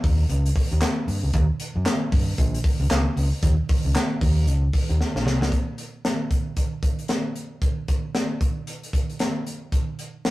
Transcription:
0.04 fingered electric bass D#2, kick, open hi-hat
0.29 fingered electric bass C#2, closed hi-hat
0.46 closed hi-hat
0.56 kick, open hi-hat
0.71 fingered electric bass D#2, closed hi-hat
0.81 snare, clap, closed hi-hat
1.08 fingered electric bass G2, open hi-hat
1.23 fingered electric bass C#2
1.33 fingered electric bass D#2, kick, closed hi-hat
1.60 closed hi-hat
1.75 fingered electric bass F#2
1.86 snare, clap, closed hi-hat
2.12 fingered electric bass G2, kick, open hi-hat
2.38 fingered electric bass A#1, kick, closed hi-hat
2.54 closed hi-hat
2.64 kick, open hi-hat
2.80 fingered electric bass C#2
2.90 fingered electric bass C#2, snare, clap, closed hi-hat
3.16 fingered electric bass C#2, open hi-hat
3.43 fingered electric bass D#2, kick, closed hi-hat
3.69 kick, open hi-hat
3.85 fingered electric bass C#2
3.96 snare, clap, closed hi-hat
4.21 fingered electric bass D#2, kick, open hi-hat
4.47 fingered electric bass C#2, closed hi-hat
4.73 kick, open hi-hat
4.89 fingered electric bass D#2, closed hi-hat
5.01 snare
5.15 fingered electric bass A#1, snare
5.25 fingered electric bass C2, snare
5.41 fingered electric bass C#2, snare
5.52 kick, closed hi-hat
5.78 closed hi-hat
6.05 snare, closed hi-hat
6.31 kick, closed hi-hat
6.57 kick, closed hi-hat
6.83 kick, closed hi-hat
6.99 closed hi-hat
7.08 snare, closed hi-hat
7.36 closed hi-hat
7.62 kick, closed hi-hat
7.88 kick, closed hi-hat
8.15 snare, closed hi-hat
8.41 kick, closed hi-hat
8.67 closed hi-hat
8.83 closed hi-hat
8.93 kick, closed hi-hat
9.10 closed hi-hat
9.19 snare, closed hi-hat
9.47 closed hi-hat
9.72 kick, closed hi-hat
9.99 closed hi-hat
10.25 snare, closed hi-hat

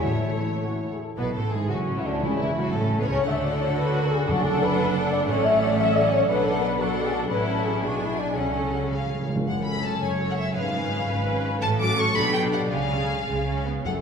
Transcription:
Already playing: harp E4, viola section E4
0.04 double bass section A1, harp A2, timpani A2, viola section A3, cello section A3, french horn section A4, violin section C#5
0.24 harp E3
0.43 harp C#4
0.62 harp E4, french horn section F#4
0.81 harp A4
0.92 french horn section G#4
1.00 harp E4, french horn section A4
1.17 double bass section B1, harp A2, cello section B2, viola section B3, violin section B4, french horn section B4
1.35 double bass section A1, cello section A2, viola section A3, harp E4, violin section A4, french horn section A4
1.51 double bass section G#1, cello section G#2, viola section G#3, harp C#4, violin section G#4, french horn section G#4
1.70 double bass section F#1, cello section F#2, harp E3, viola section F#3, violin section C#4 F#4, french horn section F#4
1.88 harp E4
1.96 cello section E2, viola section E3, violin section E4, french horn section E4
2.05 double bass section D2, cello section D2, viola section D3, harp C#4, violin section D4, french horn section D4
2.21 double bass section C#2, cello section C#2, viola section C#3, timpani C#3, harp C#3, violin section C#4 E4, french horn section C#4
2.38 double bass section E1, cello section E2, viola section E3, violin section E4, harp E4, french horn section E4
2.56 double bass section F#1, cello section F#2, viola section F#3, harp C#4, violin section F#4, french horn section F#4
2.73 double bass section A1, cello section A2, harp A3, viola section A3, violin section C#4 A4, french horn section A4
2.91 harp E4
2.99 cello section B2, viola section B3, violin section B4, french horn section B4
3.07 double bass section C#2, cello section C#3, viola section C#4, violin section C#5, french horn section C#5
3.25 double bass section D2, cello section D3, harp D3, violin section A3 F#5, viola section D4 A4, french horn section E5
3.43 harp F#4, french horn section D5
3.61 harp D4, french horn section C#5
3.77 harp A3, violin section F#4, french horn section B4
3.94 harp F#4
4.03 french horn section A4
4.11 harp D4, french horn section G#4
4.27 double bass section F#1, harp F#2, cello section F#2, timpani F#2, viola section D4 A4, violin section D4 F#5, french horn section F#4
4.44 harp D4, french horn section A4
4.61 harp A3, french horn section B4
4.78 harp F#3, french horn section B4
4.95 harp D4, french horn section A4
5.12 harp A3, french horn section D5
5.28 double bass section A1, harp A2, cello section A2, violin section A3 F#5, viola section C#4 A4, french horn section C#5
5.44 harp C#4, french horn section E5
5.61 harp A3, french horn section D5
5.78 harp F#3, violin section C#4, french horn section E5
5.94 harp C#4, french horn section D5
6.12 harp A3, french horn section C#5
6.28 double bass section B1, harp B2, cello section B2, violin section B3 F#5, viola section D4 A4, french horn section B4
6.46 harp D4, french horn section A4
6.62 harp A3, french horn section B4
6.79 harp F#3, viola section D4 A4, violin section D4 F#5, french horn section F#4
6.96 harp D4
7.04 french horn section G#4
7.12 harp A3, french horn section A4
7.29 double bass section A1, harp A2, cello section A2, viola section C#4 A4, violin section E4 F#5, french horn section B4
7.47 harp A3, french horn section A4
7.65 harp C#4 F#4, french horn section G#4
7.82 double bass section B1, cello section B2, harp B2, violin section D4 G#5, viola section D4 G#4, french horn section F#4
8.01 harp G#3, french horn section E4
8.19 harp D4 G#4, french horn section D4
8.37 double bass section C#2, cello section C#3, harp C#3, viola section C#4 A4, violin section C#4 F#5, french horn section C#4
8.55 harp C#4
8.73 harp C#4 F#4
8.91 harp C#3, timpani C#3, viola section C#4 G#4, violin section F5
8.99 timpani C#3
9.06 timpani C#3, harp C#4
9.14 timpani C#3
9.21 timpani C#3
9.28 timpani C#3, harp C#4 F4
9.36 timpani C#3
9.46 double bass section F#1, harp F#2, cello section F#2, violin section F#5
9.64 harp C#3, viola section C#4 A4, violin section B5
9.83 harp A3, violin section A5
10.00 double bass section F#1, cello section F#2, harp C#4, violin section C#5 G#5
10.18 viola section C#4 A4, harp F#4
10.30 violin section F#5
10.37 harp C#4, violin section E5
10.54 double bass section G#1, harp G#2, cello section G#2, viola section C#4 B4, violin section G#4 F5
10.72 harp F3, viola section C#4 B4
10.90 harp G#3
11.08 double bass section G#1, cello section G#2, harp C#4, violin section B4
11.26 viola section C#4 B4, harp B4
11.43 harp C#4
11.61 double bass section A1, harp A2, cello section A2, violin section A4 A5
11.79 harp F#3, viola section C#4 F#4, violin section D6
11.98 harp C#4 A4, violin section C#6
12.15 double bass section B1, harp B2, cello section B2, viola section D4 G4, violin section B5
12.34 harp B3, viola section D4 G4, violin section G5
12.53 harp D4 G4, violin section F#5
12.72 double bass section C#2, harp C#3, cello section C#3, violin section G#4 F5
12.91 harp G#3, viola section C#4 G#4
13.09 harp C#4
13.28 double bass section C#2, cello section C#3, viola section G#3, harp G#4
13.48 harp C#4, viola section C#4
13.66 viola section B3, harp G#4
13.85 double bass section F#1, harp F#2, timpani F#2, cello section F#2, viola section A3 A4, violin section F#5

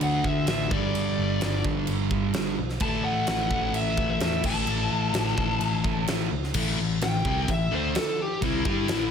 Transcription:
Already playing: overdriven electric guitar D3 A3 D4, distorted electric guitar D3 A3 D4
0.01 picked electric bass D2, lead electric guitar F#5, crash
0.24 picked electric bass D2, lead electric guitar E5, kick
0.47 picked electric bass A1, overdriven electric guitar D3 A3 D4, lead electric guitar E5, snare, crash
0.71 picked electric bass G1, overdriven electric guitar G2 D3 G3, lead electric guitar D5, kick
0.95 picked electric bass G1, crash
1.19 picked electric bass G1
1.41 picked electric bass G1, overdriven electric guitar G2 D3 G3, snare, crash
1.64 picked electric bass G1, kick
1.87 picked electric bass G1, crash
2.11 picked electric bass G1, overdriven electric guitar G2 D3 G3, kick
2.34 picked electric bass G1, snare, crash
2.59 picked electric bass B1
2.70 snare
2.80 picked electric bass A1, overdriven electric guitar A2 E3 A3, lead electric guitar A5, kick, crash
3.04 picked electric bass A2, lead electric guitar F#5
3.27 picked electric bass A1, snare, crash
3.50 picked electric bass A1, overdriven electric guitar A2 E3 A3, kick
3.72 picked electric bass A1, lead electric guitar E5, crash
3.97 picked electric bass A1, kick
4.11 lead electric guitar E5
4.19 picked electric bass E2, overdriven electric guitar A2 E3, snare, crash
4.24 overdriven electric guitar A3
4.44 picked electric bass A1, overdriven electric guitar A2 E3 A3, lead electric guitar A5, kick, crash
4.67 picked electric bass A1, crash
4.91 picked electric bass A1
5.13 picked electric bass A1, overdriven electric guitar A2 E3 A3, snare, crash
5.37 picked electric bass A1, kick
5.61 picked electric bass A1, crash
5.84 picked electric bass A1, overdriven electric guitar A2 E3 A3, kick
6.07 picked electric bass A1, snare, crash
6.32 picked electric bass C#2
6.44 snare
6.54 picked electric bass A1, overdriven electric guitar A2 E3 A3, kick, crash
6.78 picked electric bass A1, overdriven electric guitar A2 E3
7.01 picked electric bass A1, overdriven electric guitar A2 E3, lead electric guitar G5, snare, crash
7.25 picked electric bass C2, overdriven electric guitar C3 G3 C4, kick
7.48 picked electric bass A1, overdriven electric guitar A2 E3, lead electric guitar E5, kick, crash
7.71 picked electric bass D2, overdriven electric guitar D3 A3 D4, lead electric guitar C5
7.95 lead electric guitar A4, snare, crash
8.22 lead electric guitar G4
8.41 picked electric bass C2, overdriven electric guitar C3 G3 C4, lead electric guitar E4, kick, crash
8.64 picked electric bass G2, overdriven electric guitar G3 D4 G4, lead electric guitar E4, kick
8.88 picked electric bass A1, overdriven electric guitar A2 E3 A3, snare, crash

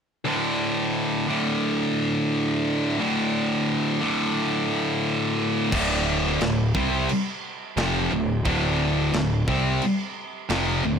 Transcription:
0.25 distorted electric guitar D2 A2 D3
1.28 distorted electric guitar D2 A2 D3
2.99 distorted electric guitar D2 A2 D3
4.01 distorted electric guitar D2 A2 D3
5.72 picked electric bass D1, distorted electric guitar D2 A2 D3, kick, crash
6.41 picked electric bass D1, distorted electric guitar D2 A2, snare, crash
6.75 picked electric bass C2, distorted electric guitar C3 G3 C4, kick
7.09 crash
7.77 picked electric bass F1, distorted electric guitar F2 C3 F3, snare, crash
8.11 picked electric bass D1, distorted electric guitar D2 A2
8.45 picked electric bass D1, distorted electric guitar D2 A2 D3, kick, crash
9.13 picked electric bass D1, distorted electric guitar D2 A2, snare, crash
9.48 picked electric bass C2, distorted electric guitar C3 G3 C4, kick
9.82 crash
10.50 picked electric bass F1, distorted electric guitar F2 C3 F3, snare, crash
10.85 picked electric bass D1, distorted electric guitar D2 A2

